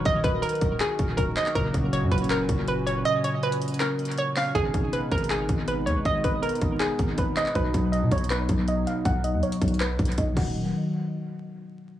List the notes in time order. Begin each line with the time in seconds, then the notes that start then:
Already playing: D#3 F#3 A#3 D#4 F#4 A#4
0.05 D#1 D#5, kick, closed hi-hat
0.24 D#1 B4, kick, closed hi-hat
0.42 A#4, closed hi-hat
0.49 closed hi-hat
0.55 closed hi-hat
0.61 D#1, kick, closed hi-hat
0.80 G#4, clap, closed hi-hat
0.99 D#1, kick, closed hi-hat
1.17 D#1 A#4, kick, closed hi-hat
1.37 D#5, cross-stick, clap, closed hi-hat
1.46 clap
1.54 F#1 A#2 C#3 F#3 C#4 F#4 A#4, kick, closed hi-hat
1.74 F#1, kick, closed hi-hat
1.93 C#5, closed hi-hat
2.02 F#2
2.11 F#1 B4, kick, closed hi-hat
2.18 closed hi-hat
2.24 closed hi-hat
2.30 A#4, clap, closed hi-hat
2.49 F#1, kick, closed hi-hat
2.68 B4, closed hi-hat
2.87 C#5, closed hi-hat
3.05 D#5, closed hi-hat
3.24 C#5, closed hi-hat
3.43 B4, closed hi-hat
3.52 closed hi-hat
3.62 closed hi-hat
3.68 closed hi-hat
3.74 closed hi-hat
3.80 A#4, clap, closed hi-hat
3.99 closed hi-hat
4.05 closed hi-hat
4.12 closed hi-hat
4.18 C#5, closed hi-hat
4.37 F5, cross-stick, clap, open hi-hat
4.54 G#1 B2 G#3 B3 D#4 G#4, kick, closed hi-hat
4.74 G#1, kick, closed hi-hat
4.93 B4, closed hi-hat
5.12 G#1 A#4, kick, closed hi-hat
5.18 closed hi-hat
5.24 closed hi-hat
5.30 G#4, clap, closed hi-hat
5.49 G#1, kick, closed hi-hat
5.68 B4, closed hi-hat
5.86 D#2 C#5, closed hi-hat
5.96 G#1
6.05 G#1 D#5, kick, closed hi-hat
6.24 G#1 B4, kick, closed hi-hat
6.42 A#4, closed hi-hat
6.49 closed hi-hat
6.55 closed hi-hat
6.61 G#1, kick, closed hi-hat
6.80 G#4, clap, closed hi-hat
6.99 G#1, kick, closed hi-hat
7.18 G#1 B4, kick, closed hi-hat
7.37 D#5, cross-stick, clap, closed hi-hat
7.46 clap
7.54 B1 B2 F#3 D#4 F#4 B4, kick, closed hi-hat
7.74 B1, kick, closed hi-hat
7.92 D#5, closed hi-hat
8.02 B2
8.12 B1 C#5, kick, closed hi-hat
8.18 closed hi-hat
8.24 closed hi-hat
8.30 B4, clap, closed hi-hat
8.49 B1, kick, closed hi-hat
8.68 D#5, closed hi-hat
8.87 F5, closed hi-hat
9.05 B1 F#5, kick, closed hi-hat
9.24 D#5, closed hi-hat
9.34 D#2
9.43 C#5, closed hi-hat
9.52 closed hi-hat
9.62 B1, kick, closed hi-hat
9.68 closed hi-hat
9.74 closed hi-hat
9.80 B4, clap, closed hi-hat
9.99 B1, kick, closed hi-hat
10.05 closed hi-hat
10.12 closed hi-hat
10.18 B1 D#5, kick, closed hi-hat
10.33 D#1 D#3 F#3 F#5, kick, crash
10.38 A#3 F#4